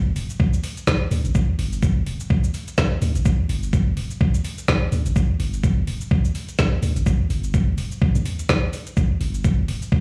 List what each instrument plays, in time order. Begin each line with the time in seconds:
Already playing: sub bass G1
0.16 sub bass D1, open hi-hat, shaker
0.30 shaker
0.40 kick
0.54 shaker
0.64 open hi-hat, shaker
0.77 closed hi-hat, shaker
0.87 kick, snare, shaker
1.11 sub bass D2, open hi-hat, shaker
1.25 sub bass G1, closed hi-hat, shaker
1.35 sub bass G1, kick, shaker
1.59 sub bass G1, open hi-hat
1.72 shaker
1.83 kick, shaker
2.06 sub bass D1, open hi-hat
2.20 shaker
2.30 kick
2.44 shaker
2.54 open hi-hat, shaker
2.68 closed hi-hat, shaker
2.78 kick, snare, shaker
3.02 sub bass D2, open hi-hat, shaker
3.15 sub bass G1, closed hi-hat, shaker
3.25 sub bass G1, kick, shaker
3.49 sub bass G1, open hi-hat
3.63 shaker
3.73 kick, shaker
3.97 sub bass D1, open hi-hat
4.11 shaker
4.21 kick
4.34 shaker
4.44 open hi-hat, shaker
4.58 closed hi-hat, shaker
4.68 kick, snare, shaker
4.92 sub bass D2, open hi-hat, shaker
5.06 sub bass G1, closed hi-hat, shaker
5.16 sub bass G1, kick, shaker
5.40 sub bass G1, open hi-hat
5.53 shaker
5.64 kick, shaker
5.87 sub bass D1, open hi-hat
6.01 shaker
6.11 kick
6.25 shaker
6.35 open hi-hat, shaker
6.49 closed hi-hat, shaker
6.59 kick, snare, shaker
6.82 sub bass D2, open hi-hat, shaker
6.96 sub bass G1, closed hi-hat, shaker
7.06 sub bass G1, kick, shaker
7.30 sub bass G1, open hi-hat, shaker
7.44 shaker
7.54 kick, shaker
7.78 sub bass D1, open hi-hat, shaker
7.92 shaker
8.02 kick
8.15 sub bass D2, shaker
8.25 open hi-hat, shaker
8.39 closed hi-hat, shaker
8.49 kick, snare, shaker
8.73 open hi-hat, shaker
8.87 closed hi-hat, shaker
8.97 sub bass G1, kick, shaker
9.21 sub bass G1, open hi-hat
9.34 shaker
9.44 kick, shaker
9.68 sub bass D1, open hi-hat
9.82 shaker
9.92 kick